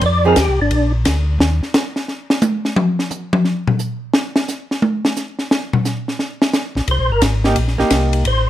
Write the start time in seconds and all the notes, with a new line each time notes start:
0.01 F2, kick, ride
0.06 D5
0.25 F3 C4 D#4 G#4 A#4
0.36 D#2 G4, kick, snare, hi-hat pedal, ride
0.48 C2
0.60 G#1 D4
0.71 A#1, kick, ride
1.05 D2, kick, snare, hi-hat pedal, ride
1.39 D#2, snare
1.63 snare
1.74 snare, hi-hat pedal
1.96 snare
2.08 snare
2.30 snare
2.42 hi-hat pedal, high tom
2.65 snare
2.76 mid tom
2.99 snare
3.10 hi-hat pedal, mid tom
3.33 mid tom
3.45 snare
3.67 floor tom
3.79 hi-hat pedal
4.14 snare
4.36 snare
4.48 snare, hi-hat pedal
4.71 snare
4.82 high tom
5.05 snare
5.16 snare, hi-hat pedal
5.39 snare
5.51 snare
5.73 floor tom
5.85 snare, hi-hat pedal
6.08 snare
6.19 snare
6.42 snare
6.53 snare, hi-hat pedal
6.75 A#1, snare
6.88 C2 C5, kick, ride
6.99 A#1
7.10 G1 A#4
7.22 G#1, kick, snare, hi-hat pedal, ride
7.44 A#3 D#4 G4, snare
7.56 A#1, kick, ride
7.68 snare
7.78 A#1 A#3 D#4 G4, snare
7.90 C2, kick, snare, hi-hat pedal, ride
8.13 ride
8.25 A1 C5, kick, ride